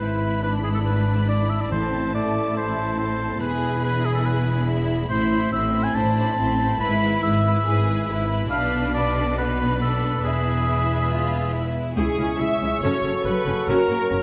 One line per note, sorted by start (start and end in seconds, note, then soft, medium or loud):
0.00 1.72 G#1 soft
0.00 1.72 G#2 soft
0.00 3.37 E4 soft
0.00 0.43 E4 soft
0.00 0.43 B4 medium
0.00 1.69 B5 soft
0.43 1.72 D4 soft
0.43 0.53 B4 medium
0.64 0.69 G#4 soft
0.74 0.79 A4 soft
0.85 1.28 B4 medium
1.29 1.51 D5 medium
1.50 1.62 E5 medium
1.60 1.71 D5 soft
1.71 3.38 A1 soft
1.71 2.31 A2 soft
1.71 3.38 A2 soft
1.71 2.14 C4 soft
1.71 3.38 A4 soft
1.71 2.13 C5 medium
1.71 3.38 A5 soft
2.14 2.56 A3 soft
2.14 2.56 D5 medium
2.55 2.98 E4 soft
2.55 2.98 C5 medium
2.98 3.41 C4 soft
2.98 3.40 C5 medium
3.41 5.07 E1 medium
3.41 5.07 E2 soft
3.41 5.07 E4 soft
3.41 3.83 G#4 medium
3.41 5.11 G#4 soft
3.41 3.82 B4 medium
3.41 5.10 B5 soft
3.84 4.67 G#4 medium
3.84 4.07 B4 medium
4.05 4.14 G#4 medium
4.14 4.27 A4 medium
4.26 4.68 B4 medium
4.68 5.09 E4 medium
5.10 5.48 A1 medium
5.10 5.48 A2 medium
5.10 5.52 E4 medium
5.10 5.31 E4 soft
5.10 5.50 C5 medium
5.10 5.31 C5 medium
5.10 5.29 B5 medium
5.31 5.52 E4 soft
5.31 5.52 C5 soft
5.31 5.52 B5 soft
5.52 5.91 A1 medium
5.52 5.90 A2 medium
5.52 5.96 C4 medium
5.52 5.73 E4 soft
5.52 5.73 C5 soft
5.52 5.85 E5 medium
5.52 5.72 B5 soft
5.73 5.95 E4 soft
5.73 5.95 C5 soft
5.73 5.95 B5 soft
5.83 5.96 G#5 medium
5.95 6.33 A1 medium
5.95 6.33 A2 medium
5.95 6.39 D4 medium
5.95 6.15 E4 medium
5.95 6.15 C5 medium
5.95 6.80 A5 medium
5.95 6.14 B5 medium
6.16 6.37 E4 soft
6.16 6.37 C5 soft
6.16 6.35 B5 medium
6.36 6.76 A1 medium
6.36 6.76 A2 medium
6.36 6.80 C4 medium
6.36 6.58 E4 soft
6.36 6.58 C5 soft
6.36 6.58 B5 soft
6.59 6.79 E4 soft
6.59 6.80 C5 soft
6.59 6.79 B5 soft
6.80 7.18 G#1 medium
6.80 7.18 G#2 medium
6.80 7.64 E4 medium
6.80 7.01 E4 medium
6.80 7.01 B4 medium
6.80 6.99 B5 medium
6.80 7.22 B5 medium
7.01 7.23 E4 medium
7.01 7.24 B4 medium
7.01 7.22 B5 soft
7.23 7.61 G#1 medium
7.23 7.61 G#2 medium
7.23 7.45 E4 soft
7.23 7.45 B4 soft
7.23 8.28 E5 medium
7.23 7.44 B5 soft
7.45 7.65 E4 soft
7.45 7.65 B4 soft
7.45 7.65 B5 soft
7.65 8.04 G#1 medium
7.65 8.03 G#2 medium
7.65 7.86 E4 medium
7.65 8.08 G#4 medium
7.65 7.85 B4 medium
7.65 7.87 B5 medium
7.86 8.08 E4 soft
7.86 8.08 B4 soft
7.86 8.08 B5 medium
8.08 8.46 G#1 medium
8.08 8.46 G#2 medium
8.08 8.29 E4 soft
8.08 8.52 E4 medium
8.08 8.29 B4 medium
8.08 8.27 B5 soft
8.28 8.51 E4 soft
8.28 8.50 B4 soft
8.28 8.47 B5 soft
8.48 10.20 B1 medium
8.48 10.19 B2 medium
8.48 9.37 D4 medium
8.48 8.91 D4 medium
8.48 8.91 B4 medium
8.48 8.91 F5 medium
8.48 8.90 B5 medium
8.94 9.35 D4 soft
8.94 9.34 B4 soft
8.94 9.36 D5 medium
8.94 9.36 B5 soft
9.36 9.81 B3 medium
9.36 10.21 D4 medium
9.36 10.21 B4 medium
9.36 9.80 B4 medium
9.36 10.22 B5 medium
9.81 10.23 D4 soft
9.81 10.24 A4 medium
10.23 11.74 E1 medium
10.23 11.75 E2 soft
10.23 10.63 E4 soft
10.23 11.52 G#4 medium
10.23 11.74 B4 soft
10.23 11.77 E5 soft
10.23 11.75 B5 soft
10.68 11.08 E4 medium
11.11 11.54 F4 medium
11.53 11.97 E4 soft
11.95 12.05 C#2 medium
11.95 12.06 C#2 medium
11.95 14.23 C#3 soft
11.95 12.79 G#3 soft
11.95 14.23 C#4 medium
11.95 12.17 E4 medium
11.95 12.42 E4 medium
11.95 12.80 E4 soft
11.95 12.37 G#4 medium
11.95 12.17 G#4 medium
11.95 12.79 G#4 soft
11.95 12.42 G#4 medium
11.95 14.23 C#6 soft
12.18 12.26 C#2 soft
12.18 12.27 C#2 soft
12.18 12.27 C#4 soft
12.18 12.26 E4 soft
12.38 12.48 C#2 soft
12.38 12.48 E4 soft
12.38 12.82 G#4 medium
12.38 12.81 E5 medium
12.38 12.83 E5 medium
12.61 12.69 C#2 soft
12.61 12.70 C#2 soft
12.61 12.70 C#4 soft
12.61 12.70 E4 soft
12.82 12.91 F#1 medium
12.82 12.91 F#2 medium
12.82 14.23 F#3 medium
12.82 13.03 C#4 medium
12.82 14.08 F#4 medium
12.82 14.23 F#4 medium
12.82 13.66 A4 soft
12.82 13.03 A4 medium
12.82 13.25 C#5 medium
12.82 13.24 C#5 medium
13.04 13.12 F#1 soft
13.04 13.13 F#2 soft
13.04 13.13 C#4 soft
13.25 13.34 F#1 soft
13.25 13.35 F#2 soft
13.25 13.34 C#4 soft
13.25 13.34 F#4 soft
13.25 13.70 B4 medium
13.25 13.67 B4 medium
13.46 13.54 F#1 soft
13.46 13.57 F#2 soft
13.46 13.56 C#4 soft
13.68 13.76 F#1 medium
13.68 13.76 F#2 medium
13.68 13.89 C#4 medium
13.68 13.89 F#4 medium
13.68 14.23 A#4 medium
13.68 14.23 A#4 soft
13.89 13.97 F#1 soft
13.89 13.98 F#2 soft
13.89 13.98 A#3 soft
13.89 13.98 C#4 soft
14.09 14.19 F#1 soft
14.09 14.19 F#2 soft
14.09 14.18 C#4 soft
14.09 14.23 F#4 medium